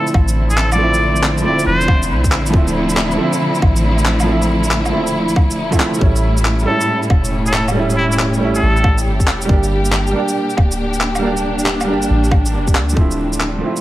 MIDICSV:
0, 0, Header, 1, 6, 480
1, 0, Start_track
1, 0, Key_signature, -1, "minor"
1, 0, Tempo, 434783
1, 879, Time_signature, 4, 2, 24, 8
1, 15245, End_track
2, 0, Start_track
2, 0, Title_t, "Muted trumpet"
2, 0, Program_c, 0, 59
2, 553, Note_on_c, 0, 69, 88
2, 763, Note_off_c, 0, 69, 0
2, 798, Note_on_c, 0, 74, 92
2, 1454, Note_off_c, 0, 74, 0
2, 1597, Note_on_c, 0, 74, 91
2, 1821, Note_off_c, 0, 74, 0
2, 1838, Note_on_c, 0, 72, 99
2, 2236, Note_off_c, 0, 72, 0
2, 7356, Note_on_c, 0, 69, 89
2, 7755, Note_off_c, 0, 69, 0
2, 8239, Note_on_c, 0, 69, 91
2, 8446, Note_off_c, 0, 69, 0
2, 8794, Note_on_c, 0, 64, 93
2, 8897, Note_off_c, 0, 64, 0
2, 8956, Note_on_c, 0, 64, 78
2, 9009, Note_off_c, 0, 64, 0
2, 9443, Note_on_c, 0, 69, 93
2, 9920, Note_off_c, 0, 69, 0
2, 15245, End_track
3, 0, Start_track
3, 0, Title_t, "Upright piano"
3, 0, Program_c, 1, 0
3, 0, Control_c, 1, 64, 127
3, 0, Note_on_c, 1, 53, 72
3, 0, Note_on_c, 1, 57, 66
3, 0, Note_on_c, 1, 60, 64
3, 0, Note_on_c, 1, 64, 81
3, 814, Note_off_c, 1, 53, 0
3, 830, Note_on_c, 1, 53, 83
3, 846, Note_off_c, 1, 57, 0
3, 862, Note_on_c, 1, 57, 75
3, 867, Note_off_c, 1, 60, 0
3, 883, Note_off_c, 1, 64, 0
3, 891, Note_on_c, 1, 60, 73
3, 919, Note_on_c, 1, 64, 92
3, 1536, Note_off_c, 1, 53, 0
3, 1552, Note_on_c, 1, 53, 74
3, 1569, Note_off_c, 1, 57, 0
3, 1585, Note_off_c, 1, 60, 0
3, 1586, Note_on_c, 1, 57, 65
3, 1599, Note_off_c, 1, 64, 0
3, 1613, Note_on_c, 1, 60, 69
3, 1643, Note_on_c, 1, 64, 80
3, 2738, Note_off_c, 1, 53, 0
3, 2755, Note_on_c, 1, 53, 84
3, 2767, Note_off_c, 1, 57, 0
3, 2784, Note_on_c, 1, 57, 79
3, 2786, Note_off_c, 1, 60, 0
3, 2801, Note_off_c, 1, 64, 0
3, 2812, Note_on_c, 1, 60, 78
3, 2842, Note_on_c, 1, 64, 88
3, 3460, Note_off_c, 1, 53, 0
3, 3476, Note_on_c, 1, 53, 75
3, 3489, Note_off_c, 1, 57, 0
3, 3505, Note_on_c, 1, 57, 69
3, 3506, Note_off_c, 1, 60, 0
3, 3521, Note_off_c, 1, 64, 0
3, 3537, Note_on_c, 1, 60, 70
3, 3565, Note_on_c, 1, 64, 82
3, 4660, Note_off_c, 1, 53, 0
3, 4677, Note_on_c, 1, 53, 82
3, 4690, Note_off_c, 1, 57, 0
3, 4707, Note_on_c, 1, 57, 77
3, 4708, Note_off_c, 1, 60, 0
3, 4722, Note_off_c, 1, 64, 0
3, 4735, Note_on_c, 1, 60, 80
3, 4766, Note_on_c, 1, 64, 95
3, 5385, Note_off_c, 1, 53, 0
3, 5402, Note_on_c, 1, 53, 76
3, 5413, Note_off_c, 1, 57, 0
3, 5427, Note_off_c, 1, 60, 0
3, 5431, Note_on_c, 1, 57, 70
3, 5443, Note_off_c, 1, 64, 0
3, 5460, Note_on_c, 1, 60, 71
3, 5491, Note_on_c, 1, 64, 82
3, 6266, Note_off_c, 1, 53, 0
3, 6281, Note_off_c, 1, 57, 0
3, 6296, Note_off_c, 1, 60, 0
3, 6299, Note_on_c, 1, 53, 94
3, 6311, Note_off_c, 1, 64, 0
3, 6314, Note_on_c, 1, 57, 90
3, 6328, Note_on_c, 1, 60, 87
3, 6344, Note_on_c, 1, 64, 102
3, 6596, Note_on_c, 1, 55, 82
3, 6606, Note_off_c, 1, 57, 0
3, 6611, Note_off_c, 1, 53, 0
3, 6623, Note_on_c, 1, 57, 74
3, 6625, Note_off_c, 1, 60, 0
3, 6633, Note_off_c, 1, 64, 0
3, 6653, Control_c, 1, 64, 0
3, 6654, Note_on_c, 1, 61, 77
3, 6684, Note_on_c, 1, 64, 92
3, 6867, Control_c, 1, 64, 127
3, 7297, Note_off_c, 1, 55, 0
3, 7313, Note_on_c, 1, 55, 75
3, 7328, Note_off_c, 1, 57, 0
3, 7345, Note_on_c, 1, 57, 71
3, 7347, Note_off_c, 1, 61, 0
3, 7362, Note_off_c, 1, 64, 0
3, 7371, Note_on_c, 1, 61, 69
3, 7404, Note_on_c, 1, 64, 80
3, 8500, Note_off_c, 1, 55, 0
3, 8516, Note_on_c, 1, 55, 83
3, 8527, Note_off_c, 1, 57, 0
3, 8544, Note_on_c, 1, 57, 75
3, 8545, Note_off_c, 1, 61, 0
3, 8562, Note_off_c, 1, 64, 0
3, 8572, Note_on_c, 1, 61, 78
3, 8604, Note_on_c, 1, 64, 91
3, 9221, Note_off_c, 1, 55, 0
3, 9238, Note_on_c, 1, 55, 76
3, 9251, Note_off_c, 1, 57, 0
3, 9266, Note_off_c, 1, 61, 0
3, 9268, Note_on_c, 1, 57, 70
3, 9282, Note_off_c, 1, 64, 0
3, 9297, Note_on_c, 1, 61, 67
3, 9326, Note_on_c, 1, 64, 82
3, 10420, Note_off_c, 1, 55, 0
3, 10436, Note_on_c, 1, 55, 85
3, 10454, Note_off_c, 1, 57, 0
3, 10465, Note_on_c, 1, 58, 75
3, 10468, Note_off_c, 1, 61, 0
3, 10483, Note_off_c, 1, 64, 0
3, 10491, Control_c, 1, 64, 0
3, 10494, Note_on_c, 1, 62, 79
3, 10526, Note_on_c, 1, 67, 91
3, 10720, Control_c, 1, 64, 127
3, 11141, Note_off_c, 1, 55, 0
3, 11158, Note_on_c, 1, 55, 73
3, 11169, Note_off_c, 1, 58, 0
3, 11186, Note_on_c, 1, 58, 70
3, 11187, Note_off_c, 1, 62, 0
3, 11203, Note_off_c, 1, 67, 0
3, 11215, Note_on_c, 1, 62, 72
3, 11245, Note_on_c, 1, 67, 83
3, 12338, Note_off_c, 1, 55, 0
3, 12354, Note_on_c, 1, 55, 82
3, 12370, Note_off_c, 1, 58, 0
3, 12386, Note_on_c, 1, 58, 78
3, 12387, Note_off_c, 1, 62, 0
3, 12402, Note_off_c, 1, 67, 0
3, 12416, Note_on_c, 1, 62, 78
3, 12443, Note_on_c, 1, 67, 95
3, 13060, Note_off_c, 1, 55, 0
3, 13076, Note_on_c, 1, 55, 79
3, 13089, Note_off_c, 1, 58, 0
3, 13106, Note_on_c, 1, 58, 67
3, 13108, Note_off_c, 1, 62, 0
3, 13121, Note_off_c, 1, 67, 0
3, 13134, Note_on_c, 1, 62, 70
3, 13163, Note_on_c, 1, 67, 85
3, 14270, Note_on_c, 1, 53, 77
3, 14278, Note_off_c, 1, 55, 0
3, 14293, Note_off_c, 1, 58, 0
3, 14301, Note_on_c, 1, 57, 73
3, 14307, Note_off_c, 1, 62, 0
3, 14321, Note_off_c, 1, 67, 0
3, 14332, Control_c, 1, 64, 0
3, 14332, Note_on_c, 1, 60, 68
3, 14361, Note_on_c, 1, 64, 85
3, 14513, Control_c, 1, 64, 127
3, 14977, Note_off_c, 1, 53, 0
3, 14994, Note_on_c, 1, 53, 69
3, 15008, Note_off_c, 1, 57, 0
3, 15025, Note_on_c, 1, 57, 63
3, 15026, Note_off_c, 1, 60, 0
3, 15040, Note_off_c, 1, 64, 0
3, 15050, Note_on_c, 1, 60, 62
3, 15083, Note_on_c, 1, 64, 75
3, 15245, Note_off_c, 1, 53, 0
3, 15245, Note_off_c, 1, 57, 0
3, 15245, Note_off_c, 1, 60, 0
3, 15245, Note_off_c, 1, 64, 0
3, 15245, End_track
4, 0, Start_track
4, 0, Title_t, "String section"
4, 0, Program_c, 2, 48
4, 0, Note_on_c, 2, 50, 88
4, 0, Note_on_c, 2, 57, 78
4, 0, Note_on_c, 2, 60, 82
4, 0, Note_on_c, 2, 64, 92
4, 623, Note_on_c, 2, 53, 92
4, 6641, Note_off_c, 2, 53, 0
4, 6645, Note_off_c, 2, 50, 0
4, 6645, Note_off_c, 2, 60, 0
4, 6647, Note_on_c, 2, 45, 94
4, 6916, Note_on_c, 2, 61, 78
4, 7976, Note_on_c, 2, 67, 80
4, 10481, Note_on_c, 2, 58, 81
4, 10482, Note_off_c, 2, 61, 0
4, 10483, Note_off_c, 2, 45, 0
4, 10485, Note_off_c, 2, 57, 0
4, 10978, Note_on_c, 2, 62, 83
4, 11145, Note_off_c, 2, 64, 0
4, 14317, Note_on_c, 2, 50, 87
4, 14320, Note_off_c, 2, 58, 0
4, 14530, Note_on_c, 2, 57, 73
4, 14685, Note_on_c, 2, 53, 76
4, 14810, Note_on_c, 2, 60, 67
4, 15245, Note_off_c, 2, 50, 0
4, 15245, Note_off_c, 2, 53, 0
4, 15245, Note_off_c, 2, 57, 0
4, 15245, Note_off_c, 2, 60, 0
4, 15245, Note_off_c, 2, 62, 0
4, 15245, Note_off_c, 2, 67, 0
4, 15245, End_track
5, 0, Start_track
5, 0, Title_t, "808-style bass"
5, 0, Program_c, 3, 38
5, 157, Note_on_c, 3, 33, 105
5, 1594, Note_on_c, 3, 26, 84
5, 1610, Note_off_c, 3, 33, 0
5, 1823, Note_off_c, 3, 26, 0
5, 1836, Note_on_c, 3, 28, 84
5, 2320, Note_on_c, 3, 36, 91
5, 2336, Note_off_c, 3, 28, 0
5, 2565, Note_on_c, 3, 33, 81
5, 2581, Note_off_c, 3, 36, 0
5, 2789, Note_off_c, 3, 33, 0
5, 2799, Note_on_c, 3, 26, 99
5, 3509, Note_off_c, 3, 26, 0
5, 4001, Note_on_c, 3, 33, 110
5, 5442, Note_on_c, 3, 26, 84
5, 5458, Note_off_c, 3, 33, 0
5, 5920, Note_on_c, 3, 29, 91
5, 5937, Note_off_c, 3, 26, 0
5, 6083, Note_on_c, 3, 26, 84
5, 6099, Note_off_c, 3, 29, 0
5, 6540, Note_off_c, 3, 26, 0
5, 6639, Note_on_c, 3, 33, 103
5, 7348, Note_off_c, 3, 33, 0
5, 7839, Note_on_c, 3, 28, 102
5, 9280, Note_on_c, 3, 33, 87
5, 9297, Note_off_c, 3, 28, 0
5, 9507, Note_off_c, 3, 33, 0
5, 9525, Note_on_c, 3, 33, 80
5, 10002, Note_on_c, 3, 31, 97
5, 10019, Note_off_c, 3, 33, 0
5, 10243, Note_on_c, 3, 28, 81
5, 10260, Note_off_c, 3, 31, 0
5, 10468, Note_off_c, 3, 28, 0
5, 10480, Note_on_c, 3, 31, 103
5, 11189, Note_off_c, 3, 31, 0
5, 11677, Note_on_c, 3, 26, 107
5, 13119, Note_on_c, 3, 31, 86
5, 13135, Note_off_c, 3, 26, 0
5, 13346, Note_off_c, 3, 31, 0
5, 13357, Note_on_c, 3, 33, 84
5, 13836, Note_on_c, 3, 29, 93
5, 13853, Note_off_c, 3, 33, 0
5, 14071, Note_on_c, 3, 38, 83
5, 14088, Note_off_c, 3, 29, 0
5, 14302, Note_off_c, 3, 38, 0
5, 14316, Note_on_c, 3, 26, 98
5, 15027, Note_off_c, 3, 26, 0
5, 15245, End_track
6, 0, Start_track
6, 0, Title_t, "Drums"
6, 78, Note_on_c, 9, 82, 31
6, 158, Note_on_c, 9, 36, 103
6, 160, Note_on_c, 9, 77, 67
6, 189, Note_off_c, 9, 82, 0
6, 268, Note_off_c, 9, 36, 0
6, 270, Note_off_c, 9, 77, 0
6, 313, Note_on_c, 9, 82, 59
6, 423, Note_off_c, 9, 82, 0
6, 555, Note_on_c, 9, 82, 47
6, 636, Note_on_c, 9, 39, 109
6, 665, Note_off_c, 9, 82, 0
6, 746, Note_off_c, 9, 39, 0
6, 794, Note_on_c, 9, 77, 68
6, 794, Note_on_c, 9, 82, 57
6, 904, Note_off_c, 9, 77, 0
6, 904, Note_off_c, 9, 82, 0
6, 1036, Note_on_c, 9, 82, 45
6, 1146, Note_off_c, 9, 82, 0
6, 1280, Note_on_c, 9, 82, 58
6, 1363, Note_on_c, 9, 39, 106
6, 1390, Note_off_c, 9, 82, 0
6, 1473, Note_off_c, 9, 39, 0
6, 1521, Note_on_c, 9, 82, 32
6, 1631, Note_off_c, 9, 82, 0
6, 1757, Note_on_c, 9, 82, 56
6, 1868, Note_off_c, 9, 82, 0
6, 1999, Note_on_c, 9, 82, 32
6, 2078, Note_on_c, 9, 36, 108
6, 2079, Note_on_c, 9, 77, 66
6, 2109, Note_off_c, 9, 82, 0
6, 2189, Note_off_c, 9, 36, 0
6, 2189, Note_off_c, 9, 77, 0
6, 2238, Note_on_c, 9, 82, 59
6, 2348, Note_off_c, 9, 82, 0
6, 2476, Note_on_c, 9, 36, 65
6, 2477, Note_on_c, 9, 82, 48
6, 2561, Note_on_c, 9, 39, 106
6, 2561, Note_on_c, 9, 77, 37
6, 2586, Note_off_c, 9, 36, 0
6, 2588, Note_off_c, 9, 82, 0
6, 2671, Note_off_c, 9, 39, 0
6, 2671, Note_off_c, 9, 77, 0
6, 2719, Note_on_c, 9, 82, 58
6, 2799, Note_on_c, 9, 36, 121
6, 2829, Note_off_c, 9, 82, 0
6, 2909, Note_off_c, 9, 36, 0
6, 2955, Note_on_c, 9, 82, 47
6, 3065, Note_off_c, 9, 82, 0
6, 3195, Note_on_c, 9, 82, 60
6, 3279, Note_on_c, 9, 39, 108
6, 3305, Note_off_c, 9, 82, 0
6, 3390, Note_off_c, 9, 39, 0
6, 3437, Note_on_c, 9, 82, 31
6, 3547, Note_off_c, 9, 82, 0
6, 3676, Note_on_c, 9, 82, 58
6, 3786, Note_off_c, 9, 82, 0
6, 3917, Note_on_c, 9, 82, 31
6, 3999, Note_on_c, 9, 77, 62
6, 4000, Note_on_c, 9, 36, 113
6, 4028, Note_off_c, 9, 82, 0
6, 4109, Note_off_c, 9, 77, 0
6, 4111, Note_off_c, 9, 36, 0
6, 4155, Note_on_c, 9, 82, 60
6, 4266, Note_off_c, 9, 82, 0
6, 4398, Note_on_c, 9, 82, 47
6, 4477, Note_on_c, 9, 39, 111
6, 4508, Note_off_c, 9, 82, 0
6, 4587, Note_off_c, 9, 39, 0
6, 4635, Note_on_c, 9, 77, 66
6, 4635, Note_on_c, 9, 82, 59
6, 4745, Note_off_c, 9, 77, 0
6, 4745, Note_off_c, 9, 82, 0
6, 4879, Note_on_c, 9, 82, 44
6, 4990, Note_off_c, 9, 82, 0
6, 5119, Note_on_c, 9, 82, 55
6, 5200, Note_on_c, 9, 39, 112
6, 5230, Note_off_c, 9, 82, 0
6, 5310, Note_off_c, 9, 39, 0
6, 5359, Note_on_c, 9, 77, 56
6, 5359, Note_on_c, 9, 82, 29
6, 5469, Note_off_c, 9, 77, 0
6, 5469, Note_off_c, 9, 82, 0
6, 5597, Note_on_c, 9, 82, 55
6, 5707, Note_off_c, 9, 82, 0
6, 5836, Note_on_c, 9, 82, 31
6, 5920, Note_on_c, 9, 36, 107
6, 5922, Note_on_c, 9, 77, 62
6, 5946, Note_off_c, 9, 82, 0
6, 6030, Note_off_c, 9, 36, 0
6, 6032, Note_off_c, 9, 77, 0
6, 6080, Note_on_c, 9, 82, 58
6, 6190, Note_off_c, 9, 82, 0
6, 6317, Note_on_c, 9, 36, 65
6, 6321, Note_on_c, 9, 77, 35
6, 6321, Note_on_c, 9, 82, 46
6, 6402, Note_off_c, 9, 77, 0
6, 6402, Note_on_c, 9, 39, 115
6, 6402, Note_on_c, 9, 77, 34
6, 6427, Note_off_c, 9, 36, 0
6, 6432, Note_off_c, 9, 82, 0
6, 6513, Note_off_c, 9, 39, 0
6, 6513, Note_off_c, 9, 77, 0
6, 6559, Note_on_c, 9, 82, 57
6, 6639, Note_on_c, 9, 36, 115
6, 6669, Note_off_c, 9, 82, 0
6, 6749, Note_off_c, 9, 36, 0
6, 6799, Note_on_c, 9, 82, 42
6, 6910, Note_off_c, 9, 82, 0
6, 7036, Note_on_c, 9, 82, 57
6, 7121, Note_on_c, 9, 39, 103
6, 7147, Note_off_c, 9, 82, 0
6, 7232, Note_off_c, 9, 39, 0
6, 7278, Note_on_c, 9, 82, 29
6, 7388, Note_off_c, 9, 82, 0
6, 7516, Note_on_c, 9, 82, 56
6, 7627, Note_off_c, 9, 82, 0
6, 7759, Note_on_c, 9, 82, 29
6, 7839, Note_on_c, 9, 36, 106
6, 7841, Note_on_c, 9, 77, 66
6, 7869, Note_off_c, 9, 82, 0
6, 7949, Note_off_c, 9, 36, 0
6, 7951, Note_off_c, 9, 77, 0
6, 8000, Note_on_c, 9, 82, 57
6, 8111, Note_off_c, 9, 82, 0
6, 8237, Note_on_c, 9, 82, 43
6, 8319, Note_on_c, 9, 39, 110
6, 8348, Note_off_c, 9, 82, 0
6, 8430, Note_off_c, 9, 39, 0
6, 8480, Note_on_c, 9, 77, 63
6, 8480, Note_on_c, 9, 82, 56
6, 8590, Note_off_c, 9, 77, 0
6, 8590, Note_off_c, 9, 82, 0
6, 8721, Note_on_c, 9, 82, 45
6, 8831, Note_off_c, 9, 82, 0
6, 8964, Note_on_c, 9, 82, 55
6, 9045, Note_on_c, 9, 39, 102
6, 9074, Note_off_c, 9, 82, 0
6, 9155, Note_off_c, 9, 39, 0
6, 9202, Note_on_c, 9, 82, 29
6, 9313, Note_off_c, 9, 82, 0
6, 9438, Note_on_c, 9, 82, 54
6, 9548, Note_off_c, 9, 82, 0
6, 9679, Note_on_c, 9, 82, 29
6, 9759, Note_on_c, 9, 77, 66
6, 9760, Note_on_c, 9, 36, 102
6, 9789, Note_off_c, 9, 82, 0
6, 9869, Note_off_c, 9, 77, 0
6, 9871, Note_off_c, 9, 36, 0
6, 9916, Note_on_c, 9, 82, 57
6, 10026, Note_off_c, 9, 82, 0
6, 10157, Note_on_c, 9, 36, 61
6, 10160, Note_on_c, 9, 82, 43
6, 10240, Note_on_c, 9, 39, 104
6, 10240, Note_on_c, 9, 77, 37
6, 10267, Note_off_c, 9, 36, 0
6, 10271, Note_off_c, 9, 82, 0
6, 10351, Note_off_c, 9, 39, 0
6, 10351, Note_off_c, 9, 77, 0
6, 10396, Note_on_c, 9, 82, 53
6, 10479, Note_on_c, 9, 36, 116
6, 10506, Note_off_c, 9, 82, 0
6, 10590, Note_off_c, 9, 36, 0
6, 10637, Note_on_c, 9, 82, 46
6, 10747, Note_off_c, 9, 82, 0
6, 10875, Note_on_c, 9, 82, 57
6, 10956, Note_on_c, 9, 39, 102
6, 10986, Note_off_c, 9, 82, 0
6, 11066, Note_off_c, 9, 39, 0
6, 11116, Note_on_c, 9, 82, 30
6, 11227, Note_off_c, 9, 82, 0
6, 11354, Note_on_c, 9, 82, 55
6, 11464, Note_off_c, 9, 82, 0
6, 11590, Note_on_c, 9, 82, 29
6, 11673, Note_on_c, 9, 77, 71
6, 11678, Note_on_c, 9, 36, 101
6, 11701, Note_off_c, 9, 82, 0
6, 11784, Note_off_c, 9, 77, 0
6, 11788, Note_off_c, 9, 36, 0
6, 11831, Note_on_c, 9, 82, 57
6, 11942, Note_off_c, 9, 82, 0
6, 12072, Note_on_c, 9, 82, 44
6, 12153, Note_on_c, 9, 39, 102
6, 12183, Note_off_c, 9, 82, 0
6, 12264, Note_off_c, 9, 39, 0
6, 12312, Note_on_c, 9, 77, 70
6, 12312, Note_on_c, 9, 82, 54
6, 12423, Note_off_c, 9, 77, 0
6, 12423, Note_off_c, 9, 82, 0
6, 12551, Note_on_c, 9, 82, 47
6, 12662, Note_off_c, 9, 82, 0
6, 12793, Note_on_c, 9, 82, 58
6, 12873, Note_on_c, 9, 39, 100
6, 12903, Note_off_c, 9, 82, 0
6, 12983, Note_off_c, 9, 39, 0
6, 13033, Note_on_c, 9, 77, 67
6, 13033, Note_on_c, 9, 82, 32
6, 13144, Note_off_c, 9, 77, 0
6, 13144, Note_off_c, 9, 82, 0
6, 13272, Note_on_c, 9, 82, 60
6, 13382, Note_off_c, 9, 82, 0
6, 13513, Note_on_c, 9, 82, 32
6, 13595, Note_on_c, 9, 77, 72
6, 13596, Note_on_c, 9, 36, 103
6, 13623, Note_off_c, 9, 82, 0
6, 13706, Note_off_c, 9, 36, 0
6, 13706, Note_off_c, 9, 77, 0
6, 13754, Note_on_c, 9, 82, 63
6, 13864, Note_off_c, 9, 82, 0
6, 13994, Note_on_c, 9, 36, 61
6, 13994, Note_on_c, 9, 82, 46
6, 14078, Note_on_c, 9, 39, 103
6, 14078, Note_on_c, 9, 77, 39
6, 14104, Note_off_c, 9, 36, 0
6, 14104, Note_off_c, 9, 82, 0
6, 14188, Note_off_c, 9, 39, 0
6, 14188, Note_off_c, 9, 77, 0
6, 14236, Note_on_c, 9, 82, 59
6, 14316, Note_on_c, 9, 36, 107
6, 14346, Note_off_c, 9, 82, 0
6, 14426, Note_off_c, 9, 36, 0
6, 14474, Note_on_c, 9, 82, 45
6, 14585, Note_off_c, 9, 82, 0
6, 14714, Note_on_c, 9, 82, 57
6, 14798, Note_on_c, 9, 39, 95
6, 14825, Note_off_c, 9, 82, 0
6, 14909, Note_off_c, 9, 39, 0
6, 15196, Note_on_c, 9, 82, 54
6, 15245, Note_off_c, 9, 82, 0
6, 15245, End_track
0, 0, End_of_file